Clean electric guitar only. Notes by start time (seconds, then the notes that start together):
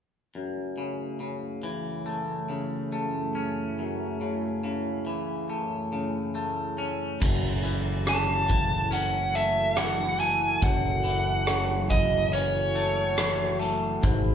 0.35 F#2
0.78 C#3
1.20 C#3
1.63 E3
2.06 A3
2.49 C#3
2.92 A3
3.35 C#4
3.79 F#2
4.21 C#3
4.64 C#3
5.07 E3
5.50 A3
5.93 C#3
6.35 A3
6.78 C#4
7.20 F#2
7.63 E3
8.06 C#3
8.48 E3
8.91 C#4
9.34 A3
9.76 E3
10.20 A3
10.62 F#2
11.04 E3
11.46 C#3
11.90 E3
12.33 C#4
12.75 A3
13.18 E3
13.60 A3
14.03 G#2